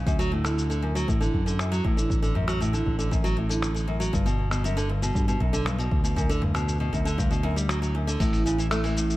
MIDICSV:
0, 0, Header, 1, 4, 480
1, 0, Start_track
1, 0, Tempo, 508475
1, 64, Time_signature, 4, 2, 24, 8
1, 8655, End_track
2, 0, Start_track
2, 0, Title_t, "Nylon-string guitar"
2, 0, Program_c, 0, 24
2, 61, Note_on_c, 0, 42, 77
2, 177, Note_off_c, 0, 42, 0
2, 180, Note_on_c, 0, 54, 103
2, 290, Note_off_c, 0, 54, 0
2, 299, Note_on_c, 0, 45, 69
2, 410, Note_off_c, 0, 45, 0
2, 417, Note_on_c, 0, 50, 73
2, 648, Note_off_c, 0, 50, 0
2, 659, Note_on_c, 0, 50, 73
2, 769, Note_off_c, 0, 50, 0
2, 778, Note_on_c, 0, 42, 69
2, 895, Note_off_c, 0, 42, 0
2, 899, Note_on_c, 0, 54, 93
2, 1010, Note_off_c, 0, 54, 0
2, 1019, Note_on_c, 0, 45, 70
2, 1129, Note_off_c, 0, 45, 0
2, 1139, Note_on_c, 0, 50, 75
2, 1369, Note_off_c, 0, 50, 0
2, 1379, Note_on_c, 0, 50, 68
2, 1490, Note_off_c, 0, 50, 0
2, 1502, Note_on_c, 0, 42, 75
2, 1617, Note_off_c, 0, 42, 0
2, 1621, Note_on_c, 0, 54, 99
2, 1730, Note_off_c, 0, 54, 0
2, 1741, Note_on_c, 0, 45, 70
2, 1850, Note_off_c, 0, 45, 0
2, 1861, Note_on_c, 0, 50, 67
2, 2090, Note_off_c, 0, 50, 0
2, 2100, Note_on_c, 0, 50, 78
2, 2210, Note_off_c, 0, 50, 0
2, 2220, Note_on_c, 0, 42, 68
2, 2336, Note_off_c, 0, 42, 0
2, 2338, Note_on_c, 0, 54, 96
2, 2449, Note_off_c, 0, 54, 0
2, 2459, Note_on_c, 0, 45, 79
2, 2570, Note_off_c, 0, 45, 0
2, 2578, Note_on_c, 0, 50, 69
2, 2809, Note_off_c, 0, 50, 0
2, 2820, Note_on_c, 0, 50, 74
2, 2930, Note_off_c, 0, 50, 0
2, 2938, Note_on_c, 0, 42, 73
2, 3055, Note_off_c, 0, 42, 0
2, 3059, Note_on_c, 0, 54, 94
2, 3169, Note_off_c, 0, 54, 0
2, 3178, Note_on_c, 0, 45, 70
2, 3289, Note_off_c, 0, 45, 0
2, 3298, Note_on_c, 0, 50, 64
2, 3524, Note_off_c, 0, 50, 0
2, 3535, Note_on_c, 0, 50, 68
2, 3648, Note_off_c, 0, 50, 0
2, 3658, Note_on_c, 0, 42, 74
2, 3775, Note_off_c, 0, 42, 0
2, 3775, Note_on_c, 0, 54, 95
2, 3888, Note_off_c, 0, 54, 0
2, 3898, Note_on_c, 0, 43, 80
2, 4009, Note_off_c, 0, 43, 0
2, 4019, Note_on_c, 0, 47, 80
2, 4248, Note_off_c, 0, 47, 0
2, 4259, Note_on_c, 0, 47, 71
2, 4369, Note_off_c, 0, 47, 0
2, 4381, Note_on_c, 0, 42, 82
2, 4497, Note_off_c, 0, 42, 0
2, 4500, Note_on_c, 0, 50, 95
2, 4610, Note_off_c, 0, 50, 0
2, 4619, Note_on_c, 0, 43, 76
2, 4730, Note_off_c, 0, 43, 0
2, 4741, Note_on_c, 0, 47, 73
2, 4971, Note_off_c, 0, 47, 0
2, 4984, Note_on_c, 0, 47, 80
2, 5092, Note_off_c, 0, 47, 0
2, 5100, Note_on_c, 0, 42, 69
2, 5216, Note_off_c, 0, 42, 0
2, 5221, Note_on_c, 0, 50, 86
2, 5330, Note_off_c, 0, 50, 0
2, 5340, Note_on_c, 0, 43, 81
2, 5450, Note_off_c, 0, 43, 0
2, 5460, Note_on_c, 0, 47, 72
2, 5690, Note_off_c, 0, 47, 0
2, 5700, Note_on_c, 0, 47, 68
2, 5810, Note_off_c, 0, 47, 0
2, 5818, Note_on_c, 0, 42, 79
2, 5935, Note_off_c, 0, 42, 0
2, 5942, Note_on_c, 0, 50, 103
2, 6051, Note_off_c, 0, 50, 0
2, 6058, Note_on_c, 0, 43, 67
2, 6169, Note_off_c, 0, 43, 0
2, 6178, Note_on_c, 0, 47, 72
2, 6409, Note_off_c, 0, 47, 0
2, 6420, Note_on_c, 0, 47, 73
2, 6530, Note_off_c, 0, 47, 0
2, 6539, Note_on_c, 0, 42, 76
2, 6655, Note_off_c, 0, 42, 0
2, 6659, Note_on_c, 0, 50, 102
2, 6769, Note_off_c, 0, 50, 0
2, 6778, Note_on_c, 0, 43, 75
2, 6889, Note_off_c, 0, 43, 0
2, 6897, Note_on_c, 0, 47, 72
2, 7009, Note_off_c, 0, 47, 0
2, 7017, Note_on_c, 0, 42, 98
2, 7128, Note_off_c, 0, 42, 0
2, 7140, Note_on_c, 0, 55, 89
2, 7250, Note_off_c, 0, 55, 0
2, 7260, Note_on_c, 0, 54, 76
2, 7370, Note_off_c, 0, 54, 0
2, 7381, Note_on_c, 0, 54, 75
2, 7497, Note_off_c, 0, 54, 0
2, 7501, Note_on_c, 0, 42, 74
2, 7617, Note_off_c, 0, 42, 0
2, 7622, Note_on_c, 0, 50, 92
2, 7731, Note_off_c, 0, 50, 0
2, 7743, Note_on_c, 0, 45, 82
2, 7971, Note_off_c, 0, 45, 0
2, 7983, Note_on_c, 0, 49, 68
2, 8091, Note_off_c, 0, 49, 0
2, 8103, Note_on_c, 0, 52, 75
2, 8172, Note_off_c, 0, 52, 0
2, 8224, Note_on_c, 0, 57, 83
2, 8332, Note_off_c, 0, 57, 0
2, 8342, Note_on_c, 0, 52, 72
2, 8451, Note_off_c, 0, 52, 0
2, 8464, Note_on_c, 0, 45, 74
2, 8655, Note_off_c, 0, 45, 0
2, 8655, End_track
3, 0, Start_track
3, 0, Title_t, "Fingered electric bass"
3, 0, Program_c, 1, 33
3, 62, Note_on_c, 1, 38, 95
3, 985, Note_off_c, 1, 38, 0
3, 1023, Note_on_c, 1, 33, 88
3, 1216, Note_off_c, 1, 33, 0
3, 1261, Note_on_c, 1, 42, 93
3, 1705, Note_off_c, 1, 42, 0
3, 1741, Note_on_c, 1, 33, 78
3, 2665, Note_off_c, 1, 33, 0
3, 2702, Note_on_c, 1, 33, 83
3, 3865, Note_off_c, 1, 33, 0
3, 3902, Note_on_c, 1, 31, 105
3, 4825, Note_off_c, 1, 31, 0
3, 4864, Note_on_c, 1, 43, 90
3, 5057, Note_off_c, 1, 43, 0
3, 5104, Note_on_c, 1, 35, 86
3, 5546, Note_off_c, 1, 35, 0
3, 5583, Note_on_c, 1, 38, 88
3, 6505, Note_off_c, 1, 38, 0
3, 6542, Note_on_c, 1, 38, 92
3, 7705, Note_off_c, 1, 38, 0
3, 7742, Note_on_c, 1, 33, 100
3, 8655, Note_off_c, 1, 33, 0
3, 8655, End_track
4, 0, Start_track
4, 0, Title_t, "Drums"
4, 62, Note_on_c, 9, 36, 102
4, 71, Note_on_c, 9, 69, 47
4, 156, Note_off_c, 9, 36, 0
4, 165, Note_off_c, 9, 69, 0
4, 192, Note_on_c, 9, 69, 29
4, 286, Note_off_c, 9, 69, 0
4, 422, Note_on_c, 9, 26, 69
4, 431, Note_on_c, 9, 69, 55
4, 516, Note_off_c, 9, 26, 0
4, 525, Note_off_c, 9, 69, 0
4, 551, Note_on_c, 9, 69, 49
4, 645, Note_off_c, 9, 69, 0
4, 671, Note_on_c, 9, 69, 30
4, 766, Note_off_c, 9, 69, 0
4, 910, Note_on_c, 9, 69, 59
4, 1005, Note_off_c, 9, 69, 0
4, 1022, Note_on_c, 9, 36, 108
4, 1032, Note_on_c, 9, 69, 46
4, 1117, Note_off_c, 9, 36, 0
4, 1126, Note_off_c, 9, 69, 0
4, 1153, Note_on_c, 9, 69, 32
4, 1247, Note_off_c, 9, 69, 0
4, 1262, Note_on_c, 9, 36, 54
4, 1356, Note_off_c, 9, 36, 0
4, 1392, Note_on_c, 9, 69, 59
4, 1486, Note_off_c, 9, 69, 0
4, 1504, Note_on_c, 9, 26, 71
4, 1512, Note_on_c, 9, 69, 50
4, 1598, Note_off_c, 9, 26, 0
4, 1607, Note_off_c, 9, 69, 0
4, 1634, Note_on_c, 9, 69, 30
4, 1728, Note_off_c, 9, 69, 0
4, 1742, Note_on_c, 9, 36, 105
4, 1836, Note_off_c, 9, 36, 0
4, 1872, Note_on_c, 9, 69, 63
4, 1966, Note_off_c, 9, 69, 0
4, 1983, Note_on_c, 9, 36, 107
4, 1993, Note_on_c, 9, 69, 46
4, 2077, Note_off_c, 9, 36, 0
4, 2087, Note_off_c, 9, 69, 0
4, 2111, Note_on_c, 9, 69, 30
4, 2205, Note_off_c, 9, 69, 0
4, 2222, Note_on_c, 9, 45, 61
4, 2316, Note_off_c, 9, 45, 0
4, 2340, Note_on_c, 9, 26, 68
4, 2349, Note_on_c, 9, 69, 55
4, 2434, Note_off_c, 9, 26, 0
4, 2443, Note_off_c, 9, 69, 0
4, 2469, Note_on_c, 9, 69, 49
4, 2564, Note_off_c, 9, 69, 0
4, 2589, Note_on_c, 9, 69, 30
4, 2683, Note_off_c, 9, 69, 0
4, 2703, Note_on_c, 9, 36, 54
4, 2798, Note_off_c, 9, 36, 0
4, 2830, Note_on_c, 9, 69, 61
4, 2924, Note_off_c, 9, 69, 0
4, 2943, Note_on_c, 9, 36, 115
4, 2950, Note_on_c, 9, 69, 46
4, 3037, Note_off_c, 9, 36, 0
4, 3044, Note_off_c, 9, 69, 0
4, 3070, Note_on_c, 9, 69, 30
4, 3165, Note_off_c, 9, 69, 0
4, 3311, Note_on_c, 9, 69, 63
4, 3405, Note_off_c, 9, 69, 0
4, 3421, Note_on_c, 9, 26, 69
4, 3430, Note_on_c, 9, 69, 51
4, 3516, Note_off_c, 9, 26, 0
4, 3525, Note_off_c, 9, 69, 0
4, 3550, Note_on_c, 9, 69, 31
4, 3644, Note_off_c, 9, 69, 0
4, 3788, Note_on_c, 9, 69, 59
4, 3882, Note_off_c, 9, 69, 0
4, 3902, Note_on_c, 9, 36, 98
4, 3910, Note_on_c, 9, 69, 44
4, 3997, Note_off_c, 9, 36, 0
4, 4004, Note_off_c, 9, 69, 0
4, 4029, Note_on_c, 9, 69, 32
4, 4123, Note_off_c, 9, 69, 0
4, 4261, Note_on_c, 9, 26, 69
4, 4270, Note_on_c, 9, 69, 53
4, 4355, Note_off_c, 9, 26, 0
4, 4364, Note_off_c, 9, 69, 0
4, 4389, Note_on_c, 9, 69, 46
4, 4483, Note_off_c, 9, 69, 0
4, 4509, Note_on_c, 9, 69, 28
4, 4604, Note_off_c, 9, 69, 0
4, 4749, Note_on_c, 9, 69, 61
4, 4843, Note_off_c, 9, 69, 0
4, 4863, Note_on_c, 9, 36, 109
4, 4869, Note_on_c, 9, 69, 45
4, 4957, Note_off_c, 9, 36, 0
4, 4963, Note_off_c, 9, 69, 0
4, 4990, Note_on_c, 9, 69, 29
4, 5085, Note_off_c, 9, 69, 0
4, 5103, Note_on_c, 9, 36, 51
4, 5198, Note_off_c, 9, 36, 0
4, 5230, Note_on_c, 9, 69, 61
4, 5325, Note_off_c, 9, 69, 0
4, 5342, Note_on_c, 9, 26, 71
4, 5351, Note_on_c, 9, 69, 49
4, 5437, Note_off_c, 9, 26, 0
4, 5446, Note_off_c, 9, 69, 0
4, 5471, Note_on_c, 9, 69, 32
4, 5565, Note_off_c, 9, 69, 0
4, 5583, Note_on_c, 9, 36, 106
4, 5678, Note_off_c, 9, 36, 0
4, 5709, Note_on_c, 9, 69, 60
4, 5803, Note_off_c, 9, 69, 0
4, 5823, Note_on_c, 9, 36, 101
4, 5830, Note_on_c, 9, 69, 51
4, 5918, Note_off_c, 9, 36, 0
4, 5925, Note_off_c, 9, 69, 0
4, 5953, Note_on_c, 9, 69, 29
4, 6048, Note_off_c, 9, 69, 0
4, 6061, Note_on_c, 9, 45, 62
4, 6155, Note_off_c, 9, 45, 0
4, 6181, Note_on_c, 9, 26, 70
4, 6190, Note_on_c, 9, 69, 56
4, 6276, Note_off_c, 9, 26, 0
4, 6285, Note_off_c, 9, 69, 0
4, 6311, Note_on_c, 9, 69, 50
4, 6405, Note_off_c, 9, 69, 0
4, 6543, Note_on_c, 9, 36, 51
4, 6552, Note_on_c, 9, 69, 32
4, 6637, Note_off_c, 9, 36, 0
4, 6646, Note_off_c, 9, 69, 0
4, 6673, Note_on_c, 9, 69, 64
4, 6767, Note_off_c, 9, 69, 0
4, 6783, Note_on_c, 9, 36, 109
4, 6792, Note_on_c, 9, 69, 50
4, 6877, Note_off_c, 9, 36, 0
4, 6887, Note_off_c, 9, 69, 0
4, 6911, Note_on_c, 9, 69, 29
4, 7006, Note_off_c, 9, 69, 0
4, 7152, Note_on_c, 9, 69, 62
4, 7246, Note_off_c, 9, 69, 0
4, 7261, Note_on_c, 9, 26, 78
4, 7270, Note_on_c, 9, 69, 56
4, 7356, Note_off_c, 9, 26, 0
4, 7365, Note_off_c, 9, 69, 0
4, 7392, Note_on_c, 9, 69, 30
4, 7486, Note_off_c, 9, 69, 0
4, 7631, Note_on_c, 9, 69, 63
4, 7725, Note_off_c, 9, 69, 0
4, 7742, Note_on_c, 9, 36, 121
4, 7742, Note_on_c, 9, 46, 66
4, 7751, Note_on_c, 9, 69, 39
4, 7836, Note_off_c, 9, 36, 0
4, 7837, Note_off_c, 9, 46, 0
4, 7846, Note_off_c, 9, 69, 0
4, 7864, Note_on_c, 9, 46, 42
4, 7873, Note_on_c, 9, 69, 22
4, 7958, Note_off_c, 9, 46, 0
4, 7967, Note_off_c, 9, 69, 0
4, 7991, Note_on_c, 9, 69, 79
4, 8086, Note_off_c, 9, 69, 0
4, 8113, Note_on_c, 9, 69, 34
4, 8208, Note_off_c, 9, 69, 0
4, 8223, Note_on_c, 9, 26, 100
4, 8223, Note_on_c, 9, 46, 67
4, 8232, Note_on_c, 9, 69, 42
4, 8318, Note_off_c, 9, 26, 0
4, 8318, Note_off_c, 9, 46, 0
4, 8327, Note_off_c, 9, 69, 0
4, 8344, Note_on_c, 9, 46, 44
4, 8353, Note_on_c, 9, 69, 21
4, 8438, Note_off_c, 9, 46, 0
4, 8447, Note_off_c, 9, 69, 0
4, 8473, Note_on_c, 9, 69, 81
4, 8567, Note_off_c, 9, 69, 0
4, 8592, Note_on_c, 9, 69, 31
4, 8655, Note_off_c, 9, 69, 0
4, 8655, End_track
0, 0, End_of_file